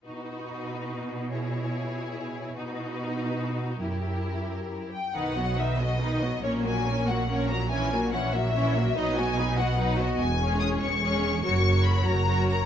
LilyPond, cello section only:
\new Staff \with { instrumentName = "Cello section" } { \clef bass \time 6/8 \key b \major \tempo 4. = 95 b,2.~ | b,2. | b,2. | fis,2~ fis,8 r8 |
b,2. | ais,2.~ | ais,2. | b,2. |
e,4. e,4. | fis,4. fis,4. | }